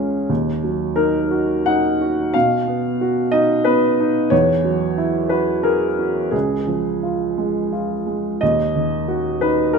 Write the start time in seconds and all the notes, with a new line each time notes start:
Already playing: C#2 G#3 C#4 F4 G#4 A#4
0.29 D#2
0.63 F#3
0.96 D#4 A#4
1.31 F#4
1.66 D#4 F#5
2.01 F#4
2.34 B2 F5
2.67 B3
3.01 F#4
3.32 D#4 D#5
3.64 B3 B4
4.00 D#4
4.30 E2 C#5
4.64 F#3
4.98 E4
5.29 F#4 B4
5.63 G#4 A#4
5.99 F#4
6.31 C#2 G#4
6.67 F3
7.03 F4
7.38 G#3
7.72 F4
8.06 G#3
8.41 D#2 D#5
8.75 D#3
9.08 F#4
9.41 D#4 B4
9.73 F#4 A#4